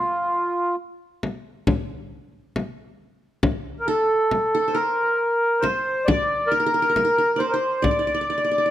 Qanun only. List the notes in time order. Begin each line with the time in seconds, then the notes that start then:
Already playing: F4
3.88 A4
4.55 A4
4.68 C5
4.75 A#4
5.63 C5
6.08 D5
6.52 A#4
6.60 A#4
6.66 A#4
6.74 A#4
6.82 A#4
6.89 A#4
6.97 A#4
7.05 A#4
7.18 A#4
7.36 C5 D5
7.54 C5
7.82 D5
7.91 D5
7.99 D5
8.07 D5
8.14 D5
8.21 D5
8.30 D5
8.38 D5
8.44 D5
8.51 D5
8.58 D5
8.66 D5